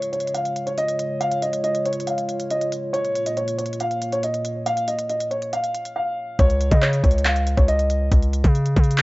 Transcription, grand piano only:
0.13 C#5
0.35 F5
0.67 C#5
0.78 D#5
1.21 F5
1.42 D#5
1.64 D#5
1.86 C#5
2.07 F5
2.51 D#5
2.93 C#5
3.26 D#5
3.37 C#5
3.58 C#5
3.80 F5
4.13 C#5
4.24 D#5
4.66 F5
4.88 D#5
5.10 D#5
5.31 C#5
5.53 F5
5.96 F5
6.39 C#5
6.71 D#5
6.82 C#5
7.03 C#5
7.25 F5
7.57 C#5
7.68 D#5

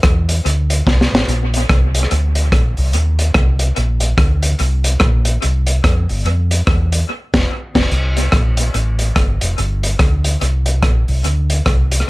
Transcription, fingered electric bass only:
0.04 E2
0.46 D2
0.87 C2
1.12 A1
1.28 A#1
1.70 C2
2.12 D2
2.52 A#1
2.78 C2
2.95 D#2
3.35 C2
3.77 A#1
4.18 D2
4.60 C2
5.01 A#1
5.44 C2
5.84 F2
6.10 G1
6.25 F2
6.67 E2
7.34 F1
7.76 F1
7.92 C2
8.33 A#1
8.74 A1
9.16 G1
9.42 F1
9.58 G1
10.00 D2
10.41 C2
10.83 A#1
11.08 C2
11.25 D2
11.67 C2

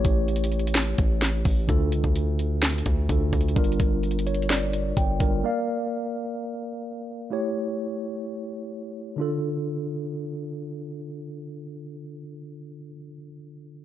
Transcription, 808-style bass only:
0.05 A1
0.99 A1
1.45 A1
1.69 D2
1.92 C#2
2.04 D2
2.86 D2
3.09 D2
3.33 D2
3.56 G1
3.80 G1
4.97 G1
5.20 G1

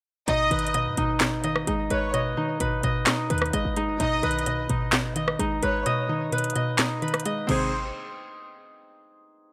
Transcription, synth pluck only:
0.29 B2
0.51 D#3
0.74 B2
0.98 B2
1.21 B2
1.44 D#3
1.68 G#3
1.90 G#3
2.14 B2
2.37 D#3
2.61 B2
2.83 B2
3.07 B2
3.30 D#3
3.53 G#3
3.77 G#3
4.00 B2
4.23 D#3
4.47 B2
4.70 B2
4.93 B2
5.16 D#3
5.39 G#3
5.63 G#3
5.86 B2
6.09 D#3
6.32 B2
6.56 B2
6.79 B2
7.02 D#3
7.26 G#3
7.49 C3 D#3 G#3 C4

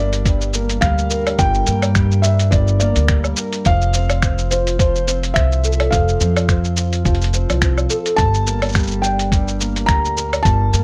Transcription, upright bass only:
Already playing: G1
0.82 D2
1.39 G1
1.68 G2
2.52 G1
2.97 D2
3.66 F1
5.36 C2
5.93 F1
6.21 F2
7.06 F1
7.50 C2
8.19 G1
9.89 D2
10.45 G1
10.74 G2

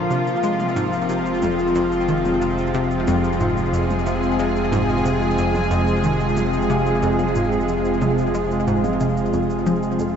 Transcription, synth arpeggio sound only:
0.10 C3
0.44 G#3
0.76 G#2
1.10 C3
1.43 F2
1.76 F2
2.09 D#3
2.42 C3
2.75 C3
3.08 F2
3.41 G#2
3.73 F2
4.06 C3
4.39 G#3
4.72 G#2
5.05 C3
5.38 F2
5.71 F2
6.04 D#3
6.37 C3
6.70 C3
7.03 F2
7.36 G#2
7.69 F2
8.02 C3
8.34 G#3
8.68 G#2
9.01 C3
9.33 F2
9.66 F3
9.99 F2

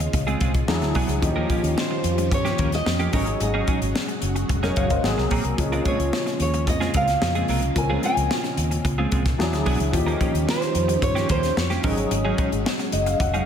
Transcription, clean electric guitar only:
0.00 muted clean electric guitar stroke
0.13 muted clean electric guitar stroke
0.27 G#3 C4 F4 G#4
0.41 G#3 C4 F4 G#4
0.54 muted clean electric guitar stroke
0.82 muted clean electric guitar stroke
0.95 F#3 B3 D4 G#4
1.09 muted clean electric guitar stroke
1.22 muted clean electric guitar stroke
1.36 F3 A#3 C#4 A#4
1.50 F3 A#3 C#4 G4
1.63 muted clean electric guitar stroke
1.77 muted clean electric guitar stroke
1.91 muted clean electric guitar stroke
2.18 muted clean electric guitar stroke
2.31 muted clean electric guitar stroke
2.45 F3 A#3 C#4 G4
2.59 F3 A#3 C#4 A#4
2.72 muted clean electric guitar stroke
2.86 muted clean electric guitar stroke
2.99 F3 A#3 C#4 G4
3.13 F#3 C#4 D#4 A#4
3.27 muted clean electric guitar stroke
3.40 muted clean electric guitar stroke
3.54 F#3 C#4 D#4 G#4
3.68 F#3 C#4 D#4 G#4
3.81 muted clean electric guitar stroke
3.95 muted clean electric guitar stroke
4.08 muted clean electric guitar stroke
4.36 muted clean electric guitar stroke
4.49 muted clean electric guitar stroke
4.63 F#3 C#4 D#4 G#4
4.77 F#3 C#4 D#4 G#4
4.90 muted clean electric guitar stroke
5.18 muted clean electric guitar stroke
5.31 F#3 A#3 C4 G#4
5.45 muted clean electric guitar stroke
5.59 muted clean electric guitar stroke
5.72 G#3 C4 F4 A#4
5.85 G#3 C4 F4 G#4
5.99 muted clean electric guitar stroke
6.13 muted clean electric guitar stroke
6.26 muted clean electric guitar stroke
6.54 muted clean electric guitar stroke
6.67 muted clean electric guitar stroke
6.80 G#3 C4 F4 G#4
6.94 G#3 C4 F4 A#4
7.08 muted clean electric guitar stroke
7.22 muted clean electric guitar stroke
7.35 G#3 C4 F4 G#4
7.49 G#3 C4 F4 A#4
7.63 muted clean electric guitar stroke
7.76 muted clean electric guitar stroke
7.90 G#3 C4 F4 G#4
8.03 G#3 C4 F4 G#4
8.17 muted clean electric guitar stroke
8.30 muted clean electric guitar stroke
8.44 muted clean electric guitar stroke
8.71 muted clean electric guitar stroke
8.85 muted clean electric guitar stroke
8.98 G#3 C4 F4 G#4
9.12 G#3 C4 F4 G#4
9.26 muted clean electric guitar stroke
9.53 muted clean electric guitar stroke
9.66 F#3 B3 D4 G#4
9.80 muted clean electric guitar stroke
9.93 muted clean electric guitar stroke
10.06 F3 A#3 C#4 A#4
10.20 F3 A#3 C#4 G4
10.34 muted clean electric guitar stroke
10.47 muted clean electric guitar stroke
10.61 muted clean electric guitar stroke
10.88 muted clean electric guitar stroke
11.02 muted clean electric guitar stroke
11.15 F3 A#3 C#4 G4
11.29 F3 A#3 C#4 A#4
11.43 muted clean electric guitar stroke
11.57 muted clean electric guitar stroke
11.70 F3 A#3 C#4 G4
11.84 F#3 C#4 D#4 A#4
11.97 muted clean electric guitar stroke
12.11 muted clean electric guitar stroke
12.25 F#3 C#4 D#4 G#4
12.38 F#3 C#4 D#4 G#4
12.52 muted clean electric guitar stroke
12.66 muted clean electric guitar stroke
12.79 muted clean electric guitar stroke
13.06 muted clean electric guitar stroke
13.20 muted clean electric guitar stroke
13.34 F#3 C#4 D#4 G#4

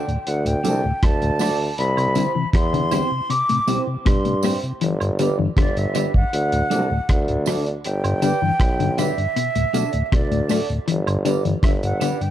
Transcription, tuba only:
0.27 D2
0.66 C2
1.03 D2
1.79 C2
2.54 E2
4.07 G2
4.82 G1
5.57 G1
6.34 D2
6.72 C2
7.10 D2
7.85 G1
8.60 B1
10.13 D2
10.89 G1
11.64 G1

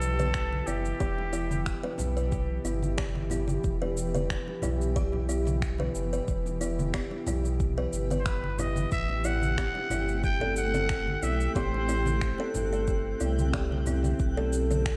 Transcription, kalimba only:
0.20 B4
0.68 E4
1.00 G4
1.33 E4
1.83 B4
2.17 B4
2.65 E4
2.98 G4
3.31 E4
3.82 B4
4.15 B4
4.63 E4
4.96 G4
5.29 E4
5.80 B4
6.13 B4
6.61 E4
6.94 G4
7.28 E4
7.78 B4
8.11 B4
8.59 E4
9.25 E4
9.58 G4
9.91 E4
10.41 A4
10.74 A4
11.23 E4
11.56 G4
11.89 E4
12.40 A4
12.73 A4
13.21 E4
13.53 G4
13.87 E4
14.37 A4
14.71 A4

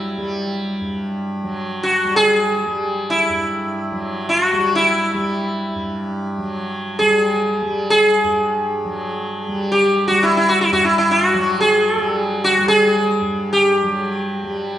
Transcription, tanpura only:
Already playing: G2 F#3 G3
0.18 G3
0.81 G2
1.43 F#3
2.04 G3
2.66 G3
3.29 G2
3.92 F#3
4.53 G3
5.14 G3
5.75 G2
6.38 F#3
7.01 G3
7.62 G3
8.24 G2
8.85 F#3
9.48 G3
10.11 G3
10.72 G2
11.34 F#3
11.97 G3
12.58 G3
13.21 G2
13.82 F#3
14.44 G3

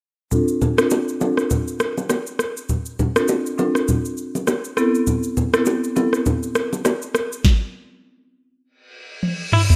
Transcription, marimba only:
0.31 C4 D4 F4 A4
0.78 C4 D4 F4 A4
1.20 C4 D4 F4 A4
3.16 C4 D4 F4 A4
3.58 C4 D4 F4 A4
4.77 B3 C4 E4 A4
5.54 B3 C4 E4 A4
5.96 B3 C4 E4 A4

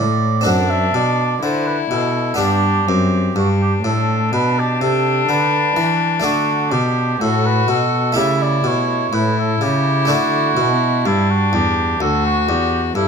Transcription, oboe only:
Already playing: D5
0.46 F#5
0.70 E5
0.95 D5
1.43 C5
1.66 B4
1.92 A4
2.40 G4
3.37 F#4
3.62 G4
3.86 A4
4.33 B4
4.59 G4
4.81 A4
5.29 B4
6.24 F#4
6.73 G4
7.21 A4
7.45 B4
7.69 A4
8.17 E5
8.42 D5
8.67 C#5
9.14 B4
9.39 A4
9.62 G4
10.10 F#4
11.07 E4
11.30 F#4
11.54 G4
12.01 A4
12.26 F#4
12.49 G4
12.96 A4

